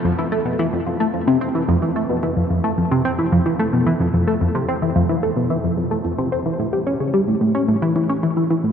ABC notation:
X:1
M:4/4
L:1/16
Q:1/4=110
K:Flyd
V:1 name="Synth arpeggio sound" clef=bass
F,, E, A, B,, E, F,, F,, A, F,, C, C E, F,, E, A, B,, | E, F,, F,, A, F,, C, C E, F,, E, A, B,, E, F,, F,, A, | F,, C, C E, F,, E, A, B,, E, F,, F,, A, F,, C, C E, | A,, G, ^C ^C, G, A,, A,, C A,, E, E, C E, E, E, A,, |]